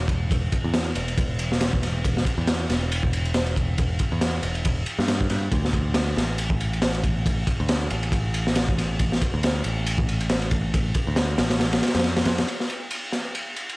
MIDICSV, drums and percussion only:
0, 0, Header, 1, 2, 480
1, 0, Start_track
1, 0, Key_signature, -1, "minor"
1, 0, Tempo, 434783
1, 331, Time_signature, 4, 2, 24, 8
1, 15200, End_track
2, 0, Start_track
2, 0, Title_t, "Drums"
2, 88, Note_on_c, 9, 36, 85
2, 97, Note_on_c, 9, 51, 60
2, 198, Note_off_c, 9, 36, 0
2, 207, Note_off_c, 9, 51, 0
2, 340, Note_on_c, 9, 36, 116
2, 345, Note_on_c, 9, 51, 84
2, 450, Note_off_c, 9, 36, 0
2, 455, Note_off_c, 9, 51, 0
2, 577, Note_on_c, 9, 51, 65
2, 579, Note_on_c, 9, 36, 95
2, 687, Note_off_c, 9, 51, 0
2, 689, Note_off_c, 9, 36, 0
2, 813, Note_on_c, 9, 38, 117
2, 815, Note_on_c, 9, 51, 91
2, 923, Note_off_c, 9, 38, 0
2, 925, Note_off_c, 9, 51, 0
2, 1053, Note_on_c, 9, 51, 74
2, 1164, Note_off_c, 9, 51, 0
2, 1193, Note_on_c, 9, 51, 46
2, 1298, Note_off_c, 9, 51, 0
2, 1298, Note_on_c, 9, 51, 83
2, 1299, Note_on_c, 9, 36, 116
2, 1409, Note_off_c, 9, 36, 0
2, 1409, Note_off_c, 9, 51, 0
2, 1534, Note_on_c, 9, 51, 73
2, 1644, Note_off_c, 9, 51, 0
2, 1676, Note_on_c, 9, 38, 55
2, 1773, Note_on_c, 9, 51, 87
2, 1779, Note_off_c, 9, 38, 0
2, 1779, Note_on_c, 9, 38, 120
2, 1883, Note_off_c, 9, 51, 0
2, 1889, Note_off_c, 9, 38, 0
2, 1912, Note_on_c, 9, 36, 85
2, 2009, Note_on_c, 9, 38, 34
2, 2019, Note_on_c, 9, 51, 67
2, 2022, Note_off_c, 9, 36, 0
2, 2119, Note_off_c, 9, 38, 0
2, 2130, Note_off_c, 9, 51, 0
2, 2258, Note_on_c, 9, 36, 100
2, 2261, Note_on_c, 9, 51, 85
2, 2368, Note_off_c, 9, 36, 0
2, 2371, Note_off_c, 9, 51, 0
2, 2397, Note_on_c, 9, 38, 57
2, 2485, Note_on_c, 9, 36, 87
2, 2499, Note_on_c, 9, 51, 77
2, 2507, Note_off_c, 9, 38, 0
2, 2596, Note_off_c, 9, 36, 0
2, 2610, Note_off_c, 9, 51, 0
2, 2732, Note_on_c, 9, 38, 120
2, 2732, Note_on_c, 9, 51, 84
2, 2842, Note_off_c, 9, 38, 0
2, 2842, Note_off_c, 9, 51, 0
2, 2977, Note_on_c, 9, 51, 65
2, 2983, Note_on_c, 9, 38, 58
2, 3087, Note_off_c, 9, 51, 0
2, 3094, Note_off_c, 9, 38, 0
2, 3221, Note_on_c, 9, 51, 91
2, 3331, Note_off_c, 9, 51, 0
2, 3348, Note_on_c, 9, 36, 88
2, 3457, Note_on_c, 9, 51, 72
2, 3458, Note_off_c, 9, 36, 0
2, 3567, Note_off_c, 9, 51, 0
2, 3591, Note_on_c, 9, 51, 39
2, 3690, Note_off_c, 9, 51, 0
2, 3690, Note_on_c, 9, 51, 82
2, 3692, Note_on_c, 9, 38, 114
2, 3800, Note_off_c, 9, 51, 0
2, 3802, Note_off_c, 9, 38, 0
2, 3825, Note_on_c, 9, 51, 44
2, 3934, Note_on_c, 9, 36, 87
2, 3935, Note_off_c, 9, 51, 0
2, 3940, Note_on_c, 9, 51, 61
2, 4044, Note_off_c, 9, 36, 0
2, 4050, Note_off_c, 9, 51, 0
2, 4172, Note_on_c, 9, 51, 77
2, 4177, Note_on_c, 9, 36, 100
2, 4283, Note_off_c, 9, 51, 0
2, 4288, Note_off_c, 9, 36, 0
2, 4404, Note_on_c, 9, 51, 73
2, 4415, Note_on_c, 9, 36, 89
2, 4515, Note_off_c, 9, 51, 0
2, 4525, Note_off_c, 9, 36, 0
2, 4651, Note_on_c, 9, 38, 112
2, 4651, Note_on_c, 9, 51, 90
2, 4761, Note_off_c, 9, 38, 0
2, 4762, Note_off_c, 9, 51, 0
2, 4888, Note_on_c, 9, 51, 62
2, 4999, Note_off_c, 9, 51, 0
2, 5024, Note_on_c, 9, 51, 44
2, 5132, Note_off_c, 9, 51, 0
2, 5132, Note_on_c, 9, 51, 84
2, 5139, Note_on_c, 9, 36, 98
2, 5242, Note_off_c, 9, 51, 0
2, 5250, Note_off_c, 9, 36, 0
2, 5367, Note_on_c, 9, 51, 63
2, 5478, Note_off_c, 9, 51, 0
2, 5509, Note_on_c, 9, 38, 61
2, 5610, Note_on_c, 9, 51, 86
2, 5613, Note_off_c, 9, 38, 0
2, 5613, Note_on_c, 9, 38, 117
2, 5720, Note_off_c, 9, 51, 0
2, 5723, Note_off_c, 9, 38, 0
2, 5747, Note_on_c, 9, 36, 89
2, 5847, Note_on_c, 9, 51, 64
2, 5853, Note_on_c, 9, 38, 37
2, 5857, Note_off_c, 9, 36, 0
2, 5958, Note_off_c, 9, 51, 0
2, 5963, Note_off_c, 9, 38, 0
2, 6089, Note_on_c, 9, 36, 119
2, 6089, Note_on_c, 9, 51, 81
2, 6199, Note_off_c, 9, 51, 0
2, 6200, Note_off_c, 9, 36, 0
2, 6234, Note_on_c, 9, 38, 55
2, 6328, Note_on_c, 9, 36, 95
2, 6330, Note_on_c, 9, 51, 63
2, 6344, Note_off_c, 9, 38, 0
2, 6438, Note_off_c, 9, 36, 0
2, 6440, Note_off_c, 9, 51, 0
2, 6561, Note_on_c, 9, 38, 110
2, 6562, Note_on_c, 9, 51, 91
2, 6671, Note_off_c, 9, 38, 0
2, 6672, Note_off_c, 9, 51, 0
2, 6817, Note_on_c, 9, 38, 62
2, 6825, Note_on_c, 9, 51, 71
2, 6927, Note_off_c, 9, 38, 0
2, 6935, Note_off_c, 9, 51, 0
2, 7046, Note_on_c, 9, 51, 86
2, 7156, Note_off_c, 9, 51, 0
2, 7177, Note_on_c, 9, 36, 99
2, 7287, Note_off_c, 9, 36, 0
2, 7292, Note_on_c, 9, 51, 65
2, 7403, Note_off_c, 9, 51, 0
2, 7433, Note_on_c, 9, 51, 39
2, 7528, Note_on_c, 9, 38, 120
2, 7529, Note_off_c, 9, 51, 0
2, 7529, Note_on_c, 9, 51, 85
2, 7638, Note_off_c, 9, 38, 0
2, 7639, Note_off_c, 9, 51, 0
2, 7668, Note_on_c, 9, 51, 45
2, 7767, Note_on_c, 9, 36, 95
2, 7768, Note_off_c, 9, 51, 0
2, 7768, Note_on_c, 9, 51, 66
2, 7878, Note_off_c, 9, 36, 0
2, 7879, Note_off_c, 9, 51, 0
2, 8012, Note_on_c, 9, 36, 101
2, 8015, Note_on_c, 9, 51, 83
2, 8123, Note_off_c, 9, 36, 0
2, 8126, Note_off_c, 9, 51, 0
2, 8247, Note_on_c, 9, 36, 91
2, 8248, Note_on_c, 9, 51, 77
2, 8358, Note_off_c, 9, 36, 0
2, 8358, Note_off_c, 9, 51, 0
2, 8485, Note_on_c, 9, 51, 87
2, 8491, Note_on_c, 9, 38, 122
2, 8596, Note_off_c, 9, 51, 0
2, 8601, Note_off_c, 9, 38, 0
2, 8726, Note_on_c, 9, 51, 67
2, 8837, Note_off_c, 9, 51, 0
2, 8863, Note_on_c, 9, 51, 43
2, 8964, Note_on_c, 9, 36, 105
2, 8969, Note_off_c, 9, 51, 0
2, 8969, Note_on_c, 9, 51, 80
2, 9075, Note_off_c, 9, 36, 0
2, 9080, Note_off_c, 9, 51, 0
2, 9208, Note_on_c, 9, 51, 74
2, 9319, Note_off_c, 9, 51, 0
2, 9349, Note_on_c, 9, 38, 58
2, 9444, Note_on_c, 9, 51, 93
2, 9449, Note_off_c, 9, 38, 0
2, 9449, Note_on_c, 9, 38, 127
2, 9555, Note_off_c, 9, 51, 0
2, 9560, Note_off_c, 9, 38, 0
2, 9589, Note_on_c, 9, 36, 97
2, 9698, Note_on_c, 9, 38, 34
2, 9698, Note_on_c, 9, 51, 66
2, 9699, Note_off_c, 9, 36, 0
2, 9808, Note_off_c, 9, 38, 0
2, 9808, Note_off_c, 9, 51, 0
2, 9929, Note_on_c, 9, 51, 85
2, 9932, Note_on_c, 9, 36, 114
2, 10039, Note_off_c, 9, 51, 0
2, 10042, Note_off_c, 9, 36, 0
2, 10070, Note_on_c, 9, 38, 61
2, 10174, Note_on_c, 9, 36, 100
2, 10174, Note_on_c, 9, 51, 75
2, 10181, Note_off_c, 9, 38, 0
2, 10284, Note_off_c, 9, 36, 0
2, 10285, Note_off_c, 9, 51, 0
2, 10412, Note_on_c, 9, 51, 87
2, 10422, Note_on_c, 9, 38, 104
2, 10522, Note_off_c, 9, 51, 0
2, 10533, Note_off_c, 9, 38, 0
2, 10643, Note_on_c, 9, 51, 67
2, 10754, Note_off_c, 9, 51, 0
2, 10892, Note_on_c, 9, 51, 90
2, 11002, Note_off_c, 9, 51, 0
2, 11020, Note_on_c, 9, 36, 104
2, 11130, Note_off_c, 9, 36, 0
2, 11136, Note_on_c, 9, 51, 62
2, 11246, Note_off_c, 9, 51, 0
2, 11266, Note_on_c, 9, 51, 48
2, 11366, Note_off_c, 9, 51, 0
2, 11366, Note_on_c, 9, 51, 83
2, 11369, Note_on_c, 9, 38, 121
2, 11477, Note_off_c, 9, 51, 0
2, 11479, Note_off_c, 9, 38, 0
2, 11501, Note_on_c, 9, 51, 46
2, 11604, Note_off_c, 9, 51, 0
2, 11604, Note_on_c, 9, 51, 73
2, 11607, Note_on_c, 9, 36, 94
2, 11714, Note_off_c, 9, 51, 0
2, 11718, Note_off_c, 9, 36, 0
2, 11855, Note_on_c, 9, 51, 84
2, 11856, Note_on_c, 9, 36, 104
2, 11965, Note_off_c, 9, 51, 0
2, 11966, Note_off_c, 9, 36, 0
2, 12083, Note_on_c, 9, 51, 76
2, 12089, Note_on_c, 9, 36, 96
2, 12194, Note_off_c, 9, 51, 0
2, 12199, Note_off_c, 9, 36, 0
2, 12323, Note_on_c, 9, 38, 123
2, 12326, Note_on_c, 9, 51, 83
2, 12433, Note_off_c, 9, 38, 0
2, 12436, Note_off_c, 9, 51, 0
2, 12564, Note_on_c, 9, 38, 110
2, 12567, Note_on_c, 9, 51, 86
2, 12674, Note_off_c, 9, 38, 0
2, 12677, Note_off_c, 9, 51, 0
2, 12700, Note_on_c, 9, 38, 107
2, 12703, Note_on_c, 9, 51, 85
2, 12806, Note_off_c, 9, 38, 0
2, 12806, Note_on_c, 9, 38, 101
2, 12813, Note_off_c, 9, 51, 0
2, 12813, Note_on_c, 9, 51, 72
2, 12917, Note_off_c, 9, 38, 0
2, 12923, Note_off_c, 9, 51, 0
2, 12947, Note_on_c, 9, 51, 72
2, 12952, Note_on_c, 9, 38, 105
2, 13049, Note_off_c, 9, 38, 0
2, 13049, Note_on_c, 9, 38, 93
2, 13057, Note_off_c, 9, 51, 0
2, 13058, Note_on_c, 9, 51, 74
2, 13112, Note_off_c, 9, 51, 0
2, 13112, Note_on_c, 9, 51, 62
2, 13118, Note_off_c, 9, 38, 0
2, 13118, Note_on_c, 9, 38, 85
2, 13188, Note_off_c, 9, 51, 0
2, 13188, Note_on_c, 9, 51, 73
2, 13189, Note_off_c, 9, 38, 0
2, 13189, Note_on_c, 9, 38, 84
2, 13236, Note_off_c, 9, 38, 0
2, 13236, Note_on_c, 9, 38, 92
2, 13241, Note_off_c, 9, 51, 0
2, 13241, Note_on_c, 9, 51, 64
2, 13291, Note_off_c, 9, 51, 0
2, 13291, Note_on_c, 9, 51, 65
2, 13295, Note_off_c, 9, 38, 0
2, 13295, Note_on_c, 9, 38, 56
2, 13401, Note_off_c, 9, 51, 0
2, 13405, Note_off_c, 9, 38, 0
2, 13430, Note_on_c, 9, 51, 73
2, 13432, Note_on_c, 9, 38, 111
2, 13527, Note_off_c, 9, 51, 0
2, 13527, Note_on_c, 9, 51, 83
2, 13536, Note_off_c, 9, 38, 0
2, 13536, Note_on_c, 9, 38, 104
2, 13637, Note_off_c, 9, 51, 0
2, 13646, Note_off_c, 9, 38, 0
2, 13669, Note_on_c, 9, 51, 74
2, 13674, Note_on_c, 9, 38, 114
2, 13779, Note_off_c, 9, 51, 0
2, 13780, Note_on_c, 9, 51, 81
2, 13785, Note_off_c, 9, 38, 0
2, 13891, Note_off_c, 9, 51, 0
2, 13913, Note_on_c, 9, 38, 52
2, 14017, Note_on_c, 9, 51, 60
2, 14024, Note_off_c, 9, 38, 0
2, 14127, Note_off_c, 9, 51, 0
2, 14249, Note_on_c, 9, 51, 87
2, 14359, Note_off_c, 9, 51, 0
2, 14489, Note_on_c, 9, 38, 54
2, 14495, Note_on_c, 9, 51, 63
2, 14600, Note_off_c, 9, 38, 0
2, 14606, Note_off_c, 9, 51, 0
2, 14736, Note_on_c, 9, 51, 75
2, 14847, Note_off_c, 9, 51, 0
2, 14975, Note_on_c, 9, 51, 62
2, 15085, Note_off_c, 9, 51, 0
2, 15118, Note_on_c, 9, 51, 40
2, 15200, Note_off_c, 9, 51, 0
2, 15200, End_track
0, 0, End_of_file